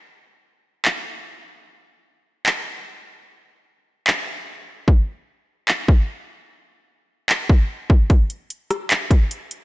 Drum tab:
HH |--------|--------|--------|--------|
CP |----x---|----x---|----x---|----x---|
SD |--------|--------|--------|--------|
BD |--------|--------|--------|o----o--|

HH |--------|xxxxxxxx|
CP |----x---|----x---|
SD |--------|---r----|
BD |-----o-o|o----o--|